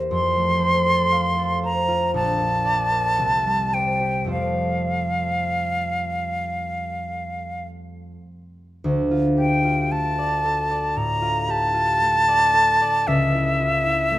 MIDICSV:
0, 0, Header, 1, 3, 480
1, 0, Start_track
1, 0, Key_signature, -1, "major"
1, 0, Tempo, 1027397
1, 53, Time_signature, 4, 2, 24, 8
1, 1494, Tempo, 1127820
1, 3894, Key_signature, -1, "minor"
1, 3894, Tempo, 1084991
1, 4374, Tempo, 1047120
1, 6330, End_track
2, 0, Start_track
2, 0, Title_t, "Flute"
2, 0, Program_c, 0, 73
2, 49, Note_on_c, 0, 84, 92
2, 746, Note_off_c, 0, 84, 0
2, 768, Note_on_c, 0, 82, 73
2, 1000, Note_off_c, 0, 82, 0
2, 1006, Note_on_c, 0, 81, 80
2, 1724, Note_on_c, 0, 79, 62
2, 1730, Note_off_c, 0, 81, 0
2, 1963, Note_off_c, 0, 79, 0
2, 1966, Note_on_c, 0, 77, 65
2, 3395, Note_off_c, 0, 77, 0
2, 4134, Note_on_c, 0, 79, 71
2, 4372, Note_on_c, 0, 81, 69
2, 4379, Note_off_c, 0, 79, 0
2, 4856, Note_on_c, 0, 82, 82
2, 4862, Note_off_c, 0, 81, 0
2, 5100, Note_on_c, 0, 81, 94
2, 5107, Note_off_c, 0, 82, 0
2, 5819, Note_on_c, 0, 76, 91
2, 5826, Note_off_c, 0, 81, 0
2, 6330, Note_off_c, 0, 76, 0
2, 6330, End_track
3, 0, Start_track
3, 0, Title_t, "Harp"
3, 0, Program_c, 1, 46
3, 0, Note_on_c, 1, 40, 38
3, 0, Note_on_c, 1, 58, 34
3, 0, Note_on_c, 1, 67, 38
3, 0, Note_on_c, 1, 70, 31
3, 0, Note_on_c, 1, 72, 35
3, 50, Note_on_c, 1, 41, 50
3, 71, Note_off_c, 1, 70, 0
3, 72, Note_off_c, 1, 40, 0
3, 72, Note_off_c, 1, 58, 0
3, 72, Note_off_c, 1, 67, 0
3, 171, Note_on_c, 1, 57, 35
3, 277, Note_off_c, 1, 72, 0
3, 282, Note_on_c, 1, 72, 39
3, 403, Note_on_c, 1, 69, 39
3, 520, Note_on_c, 1, 77, 42
3, 633, Note_off_c, 1, 69, 0
3, 639, Note_on_c, 1, 69, 39
3, 757, Note_off_c, 1, 72, 0
3, 762, Note_on_c, 1, 72, 39
3, 879, Note_on_c, 1, 65, 37
3, 1000, Note_on_c, 1, 34, 46
3, 1017, Note_off_c, 1, 69, 0
3, 1020, Note_off_c, 1, 72, 0
3, 1021, Note_off_c, 1, 41, 0
3, 1022, Note_off_c, 1, 57, 0
3, 1116, Note_on_c, 1, 58, 37
3, 1239, Note_on_c, 1, 74, 40
3, 1360, Note_on_c, 1, 70, 38
3, 1488, Note_on_c, 1, 36, 46
3, 1508, Note_off_c, 1, 58, 0
3, 1508, Note_off_c, 1, 70, 0
3, 1508, Note_off_c, 1, 77, 0
3, 1509, Note_off_c, 1, 65, 0
3, 1509, Note_off_c, 1, 74, 0
3, 1510, Note_off_c, 1, 34, 0
3, 1607, Note_on_c, 1, 55, 33
3, 1726, Note_on_c, 1, 72, 34
3, 1839, Note_on_c, 1, 67, 35
3, 1940, Note_on_c, 1, 41, 38
3, 1947, Note_on_c, 1, 57, 33
3, 1948, Note_off_c, 1, 72, 0
3, 1951, Note_on_c, 1, 65, 32
3, 1954, Note_on_c, 1, 72, 32
3, 1981, Note_off_c, 1, 67, 0
3, 1982, Note_off_c, 1, 36, 0
3, 1984, Note_off_c, 1, 55, 0
3, 3600, Note_off_c, 1, 41, 0
3, 3607, Note_off_c, 1, 57, 0
3, 3611, Note_off_c, 1, 65, 0
3, 3614, Note_off_c, 1, 72, 0
3, 3896, Note_on_c, 1, 38, 51
3, 4014, Note_on_c, 1, 65, 39
3, 4129, Note_on_c, 1, 67, 34
3, 4245, Note_off_c, 1, 65, 0
3, 4250, Note_on_c, 1, 65, 44
3, 4335, Note_off_c, 1, 67, 0
3, 4371, Note_on_c, 1, 57, 42
3, 4494, Note_on_c, 1, 74, 43
3, 4613, Note_on_c, 1, 69, 45
3, 4729, Note_off_c, 1, 74, 0
3, 4734, Note_on_c, 1, 74, 41
3, 4851, Note_on_c, 1, 45, 43
3, 4962, Note_off_c, 1, 65, 0
3, 4968, Note_on_c, 1, 65, 44
3, 5087, Note_on_c, 1, 67, 43
3, 5201, Note_off_c, 1, 65, 0
3, 5206, Note_on_c, 1, 65, 44
3, 5296, Note_off_c, 1, 67, 0
3, 5326, Note_off_c, 1, 57, 0
3, 5331, Note_on_c, 1, 57, 41
3, 5449, Note_off_c, 1, 74, 0
3, 5455, Note_on_c, 1, 74, 45
3, 5568, Note_off_c, 1, 69, 0
3, 5574, Note_on_c, 1, 69, 43
3, 5667, Note_off_c, 1, 38, 0
3, 5694, Note_off_c, 1, 74, 0
3, 5700, Note_on_c, 1, 74, 44
3, 5820, Note_on_c, 1, 37, 62
3, 5833, Note_off_c, 1, 65, 0
3, 5835, Note_off_c, 1, 45, 0
3, 5839, Note_off_c, 1, 74, 0
3, 5944, Note_on_c, 1, 64, 46
3, 6060, Note_on_c, 1, 65, 43
3, 6174, Note_off_c, 1, 64, 0
3, 6179, Note_on_c, 1, 64, 54
3, 6261, Note_off_c, 1, 65, 0
3, 6290, Note_off_c, 1, 57, 0
3, 6295, Note_on_c, 1, 57, 52
3, 6330, Note_off_c, 1, 37, 0
3, 6330, Note_off_c, 1, 57, 0
3, 6330, Note_off_c, 1, 64, 0
3, 6330, Note_off_c, 1, 69, 0
3, 6330, End_track
0, 0, End_of_file